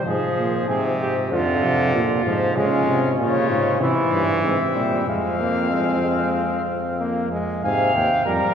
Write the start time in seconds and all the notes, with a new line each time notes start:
0.06 G#2 F3 G#4
0.37 A#2
0.69 G#2 C3 G#4
1.01 G4
1.31 F2 D3 F4
1.63 C3
1.94 A#2 F4
2.26 G#2 F3
2.56 C#3 G#3 C#4 F4
2.87 C3
3.18 A#2 C#3 F4 C#5
3.50 G#2
3.80 C3 E3 E4 C5
4.12 G2
4.43 G#2 C4 E5
4.74 A#2 G3
5.06 F2 G#3 C4 F5
5.39 A#3
5.71 G#3
6.03 G#3
6.99 A#3
7.32 G#3
7.64 G#2 C3 F5 G#5
7.95 D#2 G5
8.26 F2 G3 A#4 F5